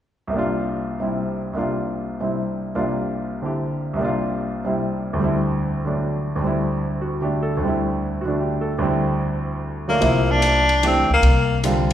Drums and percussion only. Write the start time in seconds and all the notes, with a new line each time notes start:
10.02 ride
10.42 hi-hat pedal, ride
10.69 ride
10.83 ride
11.23 ride
11.64 hi-hat pedal, ride